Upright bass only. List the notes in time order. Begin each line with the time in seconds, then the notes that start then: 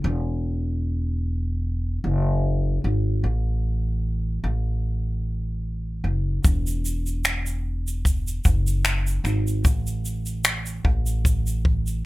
0.04 E1
2.04 F#1
2.84 G#1
3.24 A1
4.44 A1
6.04 F#1
6.44 E1
8.45 F#1
9.24 G#1
9.64 A1
10.85 A1